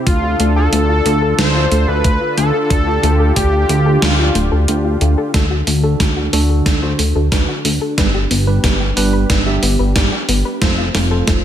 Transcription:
0.06 analog synth bass D2, analog synth pad D3 D4 F4 A4, synth arpeggio sound A3, analog synth lead F4, kick, closed hi-hat
0.23 synth arpeggio sound F4
0.40 analog synth bass D2, synth arpeggio sound A3, closed hi-hat
0.56 synth arpeggio sound A4, analog synth lead A4
0.73 analog synth bass D2, synth arpeggio sound A3, closed hi-hat
0.89 synth arpeggio sound F4
1.05 analog synth bass D2, synth arpeggio sound A3, closed hi-hat
1.22 synth arpeggio sound A4
1.39 analog synth bass D2, synth arpeggio sound A3, analog synth lead C5, snare, closed hi-hat
1.55 synth arpeggio sound F4
1.71 analog synth bass D2, synth arpeggio sound A3, closed hi-hat
1.88 analog synth bass D2, synth arpeggio sound A4, analog synth lead B4
2.04 analog synth bass D2, synth arpeggio sound A3, kick, closed hi-hat
2.21 synth arpeggio sound F4
2.37 analog synth bass D2, synth arpeggio sound A3, analog synth lead A4, closed hi-hat
2.54 synth arpeggio sound A4
2.70 analog synth bass D2, synth arpeggio sound A3, analog synth pad G4, kick, closed hi-hat
2.87 synth arpeggio sound F4
3.03 analog synth bass D2, synth arpeggio sound A3, closed hi-hat
3.20 synth arpeggio sound A4
3.36 analog synth bass D2, synth arpeggio sound A3, analog synth lead G4, kick, closed hi-hat
3.53 synth arpeggio sound F4
3.69 analog synth bass D2, synth arpeggio sound A3, closed hi-hat
3.86 synth arpeggio sound A4
4.02 analog synth bass D2, synth arpeggio sound A3, analog synth lead F4, snare, closed hi-hat
4.19 synth arpeggio sound F4
4.35 analog synth bass D1, synth arpeggio sound A3, closed hi-hat
4.52 analog synth bass D2, synth arpeggio sound A4
4.68 analog synth bass D2, synth arpeggio sound A3, closed hi-hat
4.85 synth arpeggio sound F4
5.01 analog synth bass D2, synth arpeggio sound A3, closed hi-hat
5.18 synth arpeggio sound A4
5.34 analog synth bass D2, analog synth pad D3 D4 F#4 A4, tine electric piano D3 D4 F#4 A4, synth arpeggio sound A3, kick, snare, closed hi-hat
5.51 synth arpeggio sound F#4
5.67 analog synth bass D2, synth arpeggio sound A3, open hi-hat
5.84 tine electric piano D3 D4 F#4 A4, synth arpeggio sound A4
6.00 analog synth bass D2, synth arpeggio sound A3, kick, snare, closed hi-hat
6.17 synth arpeggio sound F#4
6.33 analog synth bass D2, tine electric piano D3 D4 F#4 A4, synth arpeggio sound A3, open hi-hat
6.50 synth arpeggio sound A4
6.66 analog synth bass D2, synth arpeggio sound A3, kick, snare, closed hi-hat
6.83 tine electric piano D3 D4 F#4 C5, synth arpeggio sound F#4
6.99 analog synth bass D2, synth arpeggio sound A3, open hi-hat
7.15 analog synth bass D2, synth arpeggio sound A4
7.32 analog synth bass D2, tine electric piano D3 D4 F#4 B4, synth arpeggio sound A3, kick, snare, closed hi-hat
7.48 synth arpeggio sound F#4
7.65 analog synth bass D2, synth arpeggio sound A3, open hi-hat
7.81 synth arpeggio sound A4
7.98 analog synth bass G1, tine electric piano G3 D4 G4 B4, analog synth pad B3 G4, synth arpeggio sound B3, kick, snare, closed hi-hat
8.14 synth arpeggio sound G4
8.31 analog synth bass G1, synth arpeggio sound B3, open hi-hat
8.47 tine electric piano G3 D4 G4 B4, synth arpeggio sound B4
8.64 analog synth bass G1, synth arpeggio sound B3, kick, snare, closed hi-hat
8.80 synth arpeggio sound G4
8.97 analog synth bass G1, tine electric piano G3 D4 G4 B4, synth arpeggio sound B3, open hi-hat
9.13 synth arpeggio sound B4
9.30 analog synth bass G1, synth arpeggio sound B3, kick, snare, closed hi-hat
9.46 tine electric piano G3 D4 G4 E5, synth arpeggio sound G4
9.63 analog synth bass G1, synth arpeggio sound B3, open hi-hat
9.79 analog synth bass G1, synth arpeggio sound B4
9.96 analog synth bass G1, tine electric piano G3 D4 G4 D5, synth arpeggio sound B3, kick, snare, closed hi-hat
10.12 synth arpeggio sound G4
10.29 analog synth bass G1, synth arpeggio sound B3, open hi-hat
10.45 synth arpeggio sound B4
10.61 analog synth bass F1, tine electric piano F3 F4 A4 C5, analog synth pad A3 C4 F4, synth arpeggio sound A3, kick, snare, closed hi-hat
10.78 synth arpeggio sound F4
10.94 analog synth bass F1, synth arpeggio sound A3, snare, open hi-hat
11.11 tine electric piano F3 F4 A4 C5, synth arpeggio sound A4
11.27 analog synth bass F1, synth arpeggio sound A3, kick, snare, closed hi-hat

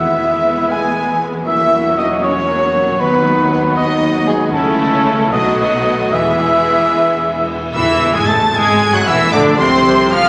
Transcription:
Already playing: double bass section E1, cello section E2, harp E3 B3 B4, viola section G#3 B3, violin section B3 E4 E5, french horn section E4, flute E5, cor anglais E5
0.19 harp E4
0.45 harp B4
0.70 french horn section G#4, harp E5, flute G#5, violin section G#5, cor anglais G#5
0.96 harp G#4
1.21 harp B4
1.46 harp E3, viola section F#3 A#3, violin section C#4 F#4 E5, french horn section E4, cor anglais E5, flute E5
1.73 harp F#3
1.97 french horn section D#4, harp F#4, cor anglais D#5, violin section D#5, flute D#5
2.23 french horn section C#4, harp A#4, violin section C#5, cor anglais C#5, flute C#5
2.49 harp F#4
2.74 harp F#3
2.99 cello section D#2, double bass section D#2, harp D#3, french horn section B3, viola section B3, violin section D#4 B4, cor anglais B4, flute B4
3.26 harp F#3
3.51 french horn section B3, harp F#4, cor anglais B4, flute B4, violin section B4
3.77 french horn section D#4, harp B4, cor anglais D#5, flute D#5, violin section D#5
4.02 harp F#4
4.27 harp F#3, french horn section G#3, cor anglais G#4, flute G#4, violin section G#4
4.53 double bass section C#2, cello section C#3, harp C#3, viola section A3 C#4, french horn section A3, violin section E4 A4, cor anglais A4, flute A4
4.80 harp A3
5.06 harp E4 E5
5.32 double bass section B1, cello section B2, harp B2, viola section F#3 A3, violin section B3 F#4 D#5, french horn section D#4, flute D#5, cor anglais D#5
5.59 french horn section D#4, flute D#5, cor anglais D#5, violin section D#5
5.86 harp F#4 B4
6.12 double bass section E1, cello section E2, viola section E3 G#3, harp E3, violin section B3 G#4 E5, french horn section E4, flute E5, cor anglais E5
6.39 harp E4
6.66 harp B4
6.93 harp E5
7.20 harp G#4
7.48 harp B4
7.74 double bass section E1, cello section E2, harp A2, viola section E3, trombone section E3, cor anglais E4, french horn section E4, violin section E5 E6, flute E5, trumpet section E5, tam-tam
8.02 harp A3
8.14 cello section G#2, viola section G#3, trombone section G#3, cor anglais G#4, french horn section G#4, flute G#5, trumpet section G#5, violin section G#5 G#6
8.28 double bass section A1, cello section A2, viola section A3, trombone section A3, cor anglais A4, french horn section A4, harp A4, trumpet section A5, flute A5, violin section A5 A6
8.54 double bass section G#1, cello section G#2, viola section G#3, trombone section G#3, harp C#4, cor anglais G#4, french horn section G#4, trumpet section G#5, flute G#5, violin section G#5 G#6
8.93 cello section F#2, trombone section F#3, viola section F#3, cor anglais F#4, french horn section F#4, trumpet section F#5, violin section F#5 F#6, flute F#5
9.06 double bass section E1, cello section E2, trombone section E3, viola section E3, harp A3, cor anglais E4, french horn section E4, trumpet section E5, flute E5, violin section E5 E6
9.31 double bass section D2, cello section D2, harp F2, trombone section D3, viola section D3, french horn section D4, cor anglais D4, trumpet section D5, violin section D5 D6, flute D5
9.57 double bass section C2, cello section C2, trombone section C3, viola section C3, harp A3, french horn section C4, cor anglais C4, trumpet section C5, violin section C5 C6, flute C5
9.86 harp A4
10.12 double bass section F1, cello section F2, viola section F3, trombone section F3, harp C4, french horn section F4, cor anglais F4, trumpet section F5, violin section F5 F6, flute F5

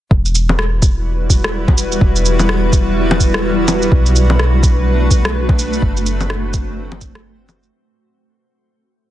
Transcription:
0.11 808-style bass E1, ambient pad G3 E4 F#4 B4, kick
0.25 shaker
0.35 shaker
0.49 low bongo
0.59 cross-stick
0.82 kick, shaker
1.30 kick, shaker
1.44 cross-stick
1.68 kick, low bongo
1.78 shaker
1.92 shaker
2.01 808-style bass E1, kick
2.16 shaker
2.25 shaker
2.39 low bongo, shaker
2.49 cross-stick
2.73 kick, shaker
3.11 low bongo
3.20 kick, shaker
3.34 cross-stick
3.68 low bongo, shaker
3.82 shaker
3.92 808-style bass B1, ambient pad A3 D4 B4, kick
4.06 shaker
4.16 shaker
4.30 low bongo
4.39 cross-stick
4.63 kick, shaker
5.11 kick, shaker
5.25 cross-stick
5.49 kick, low bongo
5.59 shaker
5.73 shaker
5.82 808-style bass F#1, ambient pad C4 C5, kick
5.97 shaker
6.06 shaker
6.21 low bongo, shaker
6.30 cross-stick
6.54 kick, shaker
6.92 low bongo
7.01 kick, shaker
7.15 cross-stick
7.49 low bongo, shaker
7.63 shaker

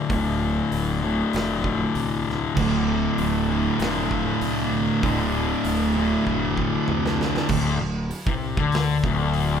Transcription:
Already playing: distorted electric guitar D3
0.10 fingered electric bass D1, distorted electric guitar D2 A2 D3, kick, open hi-hat
0.71 fingered electric bass D1, open hi-hat
1.02 distorted electric guitar D2 A2 D3
1.33 fingered electric bass F1, snare, open hi-hat
1.64 kick
1.95 fingered electric bass C2, open hi-hat
2.30 snare
2.57 fingered electric bass D1, distorted electric guitar D2 A2 D3, kick, crash
3.18 fingered electric bass D1, open hi-hat
3.49 distorted electric guitar D2 A2 D3
3.79 fingered electric bass F1, distorted electric guitar D2 A2 D3, snare, open hi-hat
4.11 kick
4.41 fingered electric bass C2, open hi-hat
5.03 fingered electric bass D1, distorted electric guitar D2 A2 D3, kick, open hi-hat
5.64 fingered electric bass D1, open hi-hat
5.97 distorted electric guitar D2 A2 D3
6.24 fingered electric bass F1, distorted electric guitar D2 A2, kick
6.29 distorted electric guitar D3
6.58 kick
6.88 fingered electric bass C2, mid tom
7.06 snare
7.21 snare
7.37 snare
7.49 fingered electric bass D1, distorted electric guitar D2, kick, crash
7.81 fingered electric bass D1, distorted electric guitar D2
8.11 open hi-hat
8.26 fingered electric bass C2, distorted electric guitar C3, kick
8.57 fingered electric bass D2, distorted electric guitar D3, kick
8.72 snare, open hi-hat
9.03 fingered electric bass D1, distorted electric guitar D2, kick
9.33 open hi-hat

